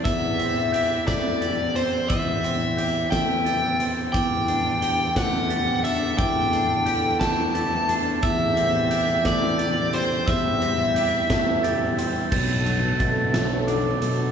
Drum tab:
CC |------|------|------|------|
HH |xxxxxx|xxxxxx|xxxxxx|xxxxxx|
SD |---o--|---o--|---o--|---o--|
BD |o--o--|o--o--|o--o--|o--o--|

CC |------|------|x-----|
HH |xxxxxx|xxxxxx|-xxxxx|
SD |---o--|---o--|---o--|
BD |o--o--|o--o--|o-o---|